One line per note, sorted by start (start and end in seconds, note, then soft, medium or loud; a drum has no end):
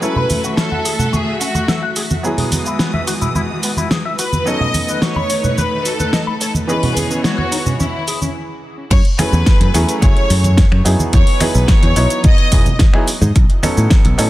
0.01 2.21 F#3 medium
0.01 2.21 A3 medium
0.01 2.22 A3 medium
0.01 2.21 C#4 medium
0.01 2.21 E4 medium
0.01 4.43 F#4 medium
0.01 2.21 A4 medium
0.01 0.54 B4 medium
0.01 2.22 E5 medium
0.01 cabasa soft
0.16 0.26 B4 medium
0.16 low conga medium
0.30 open hi-hat medium
0.30 high conga medium
0.30 cabasa medium
0.44 0.54 F#4 medium
0.44 cabasa soft
0.57 0.68 C#4 medium
0.57 1.13 A4 medium
0.57 snare loud
0.57 cabasa soft
0.72 0.79 F#5 medium
0.72 high conga medium
0.85 0.90 G#4 medium
0.85 open hi-hat loud
0.85 cabasa medium
0.99 1.06 F#4 medium
0.99 low conga medium
0.99 cabasa soft
1.13 1.17 F#4 medium
1.13 1.41 G#4 medium
1.13 high conga medium
1.13 cabasa soft
1.40 1.48 C#4 medium
1.40 1.92 F#4 medium
1.40 open hi-hat medium
1.40 cabasa medium
1.55 1.65 F#4 medium
1.55 high conga medium
1.55 cabasa soft
1.68 1.76 A4 medium
1.68 snare loud
1.68 cabasa soft
1.83 1.90 F#5 medium
1.96 2.01 G#4 medium
1.96 open hi-hat medium
1.96 cabasa medium
2.10 high conga medium
2.10 cabasa soft
2.23 4.44 E3 medium
2.23 4.43 F#3 medium
2.23 4.44 G#3 medium
2.23 4.43 B3 medium
2.23 4.43 E4 medium
2.23 4.44 G#4 medium
2.23 4.44 D#6 medium
2.23 cabasa soft
2.38 2.49 G#4 medium
2.38 open hi-hat medium
2.38 low conga medium
2.52 open hi-hat medium
2.52 high conga medium
2.52 cabasa medium
2.66 2.77 E4 medium
2.66 cabasa soft
2.79 2.91 B3 medium
2.79 snare loud
2.79 cabasa soft
2.94 3.01 E5 medium
2.94 high conga medium
3.07 3.12 F#4 loud
3.07 open hi-hat medium
3.07 cabasa medium
3.22 3.29 E4 medium
3.22 low conga medium
3.22 cabasa soft
3.35 3.40 E4 medium
3.35 high conga medium
3.35 cabasa soft
3.63 3.70 B3 medium
3.63 open hi-hat medium
3.63 cabasa medium
3.77 3.88 E4 medium
3.77 high conga medium
3.77 cabasa soft
3.91 3.98 G#4 medium
3.91 snare loud
3.91 cabasa soft
4.05 4.12 E5 medium
4.19 4.23 F#4 medium
4.19 4.45 B4 medium
4.19 open hi-hat medium
4.19 cabasa medium
4.33 high conga medium
4.33 cabasa soft
4.46 6.65 F#3 medium
4.46 6.67 A3 medium
4.46 6.65 B3 medium
4.46 6.66 C#4 medium
4.46 6.67 D#4 medium
4.46 6.66 D#4 medium
4.46 6.66 A4 medium
4.46 6.67 B4 medium
4.46 4.94 D#5 loud
4.46 cabasa soft
4.60 4.71 D#5 medium
4.60 low conga medium
4.74 open hi-hat medium
4.74 high conga medium
4.74 cabasa medium
4.88 4.99 B4 medium
4.88 cabasa soft
4.95 5.02 D#5 medium
5.02 5.13 F#4 medium
5.02 5.58 C#5 loud
5.02 snare loud
5.02 cabasa soft
5.16 5.23 B5 medium
5.16 high conga medium
5.30 5.34 C#5 loud
5.30 open hi-hat medium
5.30 cabasa medium
5.44 5.51 B4 medium
5.44 low conga medium
5.44 cabasa soft
5.58 5.85 B4 loud
5.58 5.62 B4 medium
5.58 high conga medium
5.58 cabasa soft
5.85 5.93 F#4 medium
5.85 6.39 A4 loud
5.85 open hi-hat medium
5.85 cabasa medium
6.00 6.10 B4 medium
6.00 high conga medium
6.00 cabasa soft
6.13 6.20 D#5 medium
6.13 snare loud
6.13 cabasa soft
6.27 6.34 B5 medium
6.40 6.53 A4 medium
6.40 6.45 C#5 medium
6.40 open hi-hat medium
6.40 cabasa medium
6.54 high conga medium
6.54 cabasa soft
6.67 8.87 E3 medium
6.67 8.34 E3 medium
6.67 8.87 B3 medium
6.67 8.34 B3 medium
6.67 8.88 C#4 medium
6.67 8.88 G#4 medium
6.67 6.94 B4 loud
6.67 8.34 C#5 medium
6.67 8.88 D#5 medium
6.67 cabasa soft
6.83 6.93 F#4 medium
6.83 open hi-hat medium
6.83 low conga medium
6.96 7.24 G#4 medium
6.96 open hi-hat medium
6.96 high conga medium
6.96 cabasa medium
7.10 7.21 C#4 medium
7.10 cabasa soft
7.24 7.35 G#3 medium
7.24 7.76 F#4 medium
7.24 snare loud
7.24 cabasa soft
7.38 7.45 C#5 medium
7.38 high conga medium
7.52 7.56 D#4 medium
7.52 open hi-hat medium
7.52 cabasa medium
7.66 7.73 C#4 medium
7.66 low conga medium
7.66 cabasa soft
7.80 7.84 C#4 medium
7.80 8.32 E4 medium
7.80 high conga medium
7.80 cabasa soft
8.08 8.18 G#4 medium
8.08 open hi-hat medium
8.08 cabasa medium
8.21 8.29 C#4 medium
8.21 high conga medium
8.21 cabasa soft
8.91 9.00 F#2 loud
8.91 9.04 C#5 loud
8.91 kick loud
8.91 closed hi-hat medium
8.91 crash loud
8.91 cabasa soft
9.05 closed hi-hat soft
9.19 9.71 F#3 medium
9.19 9.71 A3 medium
9.19 9.71 C#4 medium
9.19 9.71 E4 medium
9.19 9.71 G#4 medium
9.19 9.98 B4 loud
9.19 finger snap medium
9.19 open hi-hat loud
9.19 high conga medium
9.19 cabasa medium
9.33 9.41 E2 medium
9.33 cabasa soft
9.46 kick loud
9.46 snare loud
9.46 closed hi-hat medium
9.46 cabasa soft
9.60 9.69 F#2 loud
9.60 closed hi-hat medium
9.60 high conga medium
9.74 9.83 E2 loud
9.74 9.99 F#3 medium
9.74 9.99 A3 medium
9.74 9.99 C#4 medium
9.74 9.99 E4 medium
9.74 9.99 G#4 loud
9.74 open hi-hat loud
9.74 cabasa medium
9.89 closed hi-hat medium
9.89 cabasa soft
10.01 10.11 F#1 loud
10.01 10.82 F#3 medium
10.01 10.82 A3 medium
10.01 10.82 C#4 medium
10.01 10.82 E4 medium
10.01 10.83 G#4 medium
10.01 10.81 C#5 loud
10.01 kick loud
10.01 closed hi-hat medium
10.01 high conga medium
10.01 cabasa soft
10.17 closed hi-hat soft
10.30 10.63 F#2 loud
10.30 open hi-hat loud
10.30 cabasa medium
10.44 closed hi-hat soft
10.44 high conga medium
10.44 cabasa soft
10.57 kick loud
10.57 snare loud
10.57 closed hi-hat medium
10.57 cabasa soft
10.72 10.80 F#2 loud
10.72 finger snap medium
10.85 10.94 F#2 medium
10.85 11.37 F#3 medium
10.85 11.37 B3 medium
10.85 11.38 D#4 medium
10.85 11.38 E4 medium
10.85 11.38 G#4 medium
10.85 open hi-hat loud
10.85 cabasa medium
10.99 high conga medium
10.99 cabasa soft
11.13 11.22 E2 loud
11.13 11.39 C#5 loud
11.13 kick loud
11.13 closed hi-hat medium
11.13 cabasa soft
11.27 open hi-hat medium
11.40 11.93 F#3 medium
11.40 11.93 B3 medium
11.40 11.93 D#4 medium
11.40 11.93 E4 medium
11.40 11.94 G#4 loud
11.40 11.69 B4 medium
11.40 finger snap medium
11.40 open hi-hat loud
11.40 high conga medium
11.40 cabasa medium
11.55 11.64 B1 medium
11.55 cabasa soft
11.68 12.25 C#5 loud
11.68 kick loud
11.68 snare loud
11.68 closed hi-hat medium
11.68 cabasa soft
11.83 11.92 E2 loud
11.83 closed hi-hat medium
11.83 high conga medium
11.96 12.05 B1 medium
11.96 12.49 F#3 loud
11.96 12.49 B3 medium
11.96 12.49 D#4 medium
11.96 12.49 E4 medium
11.96 12.49 C#5 loud
11.96 open hi-hat loud
11.96 cabasa medium
12.10 closed hi-hat medium
12.10 cabasa soft
12.24 12.76 D#5 loud
12.24 kick loud
12.24 closed hi-hat medium
12.24 high conga medium
12.24 cabasa soft
12.38 closed hi-hat soft
12.52 12.61 E1 loud
12.52 12.63 F#3 medium
12.52 12.63 B3 medium
12.52 12.63 D#4 medium
12.52 12.63 E4 medium
12.52 12.64 G#4 medium
12.52 kick medium
12.52 open hi-hat loud
12.52 cabasa medium
12.66 closed hi-hat soft
12.66 high conga medium
12.66 low conga loud
12.66 cabasa soft
12.79 kick loud
12.79 snare loud
12.79 closed hi-hat medium
12.79 cabasa soft
12.93 13.05 F#3 medium
12.93 13.05 B3 medium
12.93 13.05 D#4 medium
12.93 13.05 E4 medium
12.93 13.05 G#4 loud
12.93 finger snap medium
13.08 open hi-hat loud
13.08 cabasa medium
13.22 13.30 G#2 loud
13.22 high conga loud
13.22 cabasa soft
13.36 13.44 B1 loud
13.36 kick loud
13.36 closed hi-hat medium
13.36 cabasa soft
13.50 closed hi-hat soft
13.63 14.15 F#3 medium
13.63 14.15 B3 medium
13.63 14.16 C#4 medium
13.63 14.16 D#4 medium
13.63 14.16 A4 medium
13.63 finger snap medium
13.63 open hi-hat loud
13.63 high conga medium
13.63 cabasa medium
13.77 13.86 A2 medium
13.77 cabasa soft
13.90 kick loud
13.90 snare loud
13.90 closed hi-hat medium
13.90 cabasa soft
14.04 14.14 B1 loud
14.04 closed hi-hat medium
14.04 high conga medium
14.18 14.28 A2 medium
14.18 14.30 F#3 medium
14.18 14.30 B3 medium
14.18 14.30 C#4 medium
14.18 14.30 D#4 medium
14.18 14.30 A4 loud
14.18 open hi-hat loud
14.18 cabasa medium